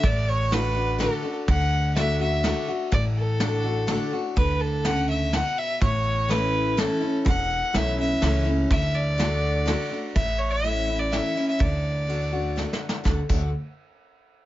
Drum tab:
CC |------------------|------------------|------------------|------------------|
RD |x-----x-----x-----|x-----x-----x-----|x-----x-----x-----|x-----x-----x-----|
SD |------o-----o-----|------o-----o-----|------o-----o-----|------o-----o-----|
BD |o-----------------|o-----------------|o-----------------|o-----------------|

CC |------------------|------------------|------------------|------------------|
RD |x-----x-----x-----|x-----x-----x-----|x-----x-----x-----|x-----x-----x--x--|
SD |------o-----o-----|------o-----o-----|------o-----o-----|------------o-----|
BD |o-----------------|o-----------------|o-----------------|o-----------------|

CC |------------------|---x--------------|
RD |x-----x-----------|------------------|
SD |------------o-o-o-|o-----------------|
BD |o-----------------|o--o--------------|